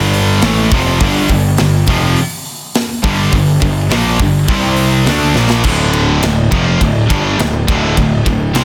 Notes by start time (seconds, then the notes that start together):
Already playing: G1 G2 D3 G3
0.14 open hi-hat
0.41 A1 A2 E3 A3, snare, open hi-hat
0.71 F1 F2 C3 F3, kick, open hi-hat
1.00 G1 G2 D3 G3, kick, open hi-hat
1.28 G1 G2 D3, kick, open hi-hat
1.57 G1 G2 D3, snare, open hi-hat
1.87 F1 F2 C3 F3, kick, open hi-hat
2.16 open hi-hat
2.45 open hi-hat
2.74 snare, open hi-hat
3.03 G1 G2 D3 G3, kick
3.32 G1 G2 D3, kick, open hi-hat
3.61 G1 G2 D3, kick, open hi-hat
3.89 A#1 A#2 F3 A#3, snare, open hi-hat
4.19 G1 G2 D3, kick, open hi-hat
4.48 C2 C3 G3 C4, kick, open hi-hat
4.76 open hi-hat
5.05 D2 D3 A3 D4, snare, open hi-hat
5.34 A#1 A#2 F3 A#3, snare
5.50 snare
5.64 D1 D2 A2 D3, kick, crash
5.93 ride
6.23 D1 D2 A2, snare, ride
6.51 F1 F2 C3 F3, kick, ride
6.80 D1 D2 A2, kick, ride
7.09 G1 G2 D3 G3, kick, ride
7.39 D1 D2 A2, snare, ride
7.68 D1 D2 A2 D3, kick, ride
7.97 D1 D2 A2, kick, ride
8.26 D1 D2 A2, kick, ride
8.55 C2 C3 G3 C4, snare, ride